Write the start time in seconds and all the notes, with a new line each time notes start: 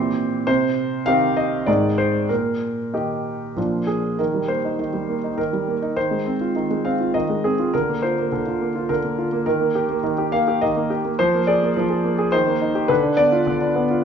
Already playing: A#2 E3 C4 G4 C5
0.47 C3 C5
1.06 D#3 C4 G4 F5
1.37 D#5
1.66 G#2 D#3 D#4 G#4 D5
1.98 C5
2.29 A#2 A#4
2.93 D#3 D#4 G4
3.56 A#2 F3 D4 F4
3.87 G#4
4.19 D#3 A#4
4.34 G3
4.48 A#3 C5
4.65 D#4
4.79 D#3
4.94 G3
5.09 A#3
5.24 D#4
5.38 D#3 A#4
5.53 G3
5.68 A#3
5.82 D#4
5.97 D#3 C5
6.11 G#3
6.26 C4
6.41 F4
6.56 D#3
6.71 G#3
6.85 C4 F5
7.00 F4
7.14 D#3 D#5
7.30 G#3
7.44 C4 G#4
7.59 F4
7.74 D3 A#4
7.89 A#3
8.02 F4 C5
8.18 A#3
8.32 D3
8.46 F4
8.61 A#3
8.76 F4
8.89 D3 A#4
9.04 A#3
9.18 F4
9.32 A#3
9.46 D#3 A#4
9.61 A#3
9.75 G4
9.89 A#3
10.03 D#3
10.18 G4
10.32 A#3 F5
10.48 G4
10.61 D#3 D#5
10.76 A#3
10.90 G4
11.05 A#3
11.19 F3 C5
11.34 A#3
11.47 G#4 D5
11.62 A#3
11.76 F3
11.90 G#4
12.04 A#3
12.18 G#4
12.32 D#3 C5
12.47 A#3
12.62 D#4
12.75 G4
12.88 D3 B4
13.03 D4
13.17 B3 D5
13.32 F4
13.47 D3
13.61 D4
13.76 B3
13.91 F4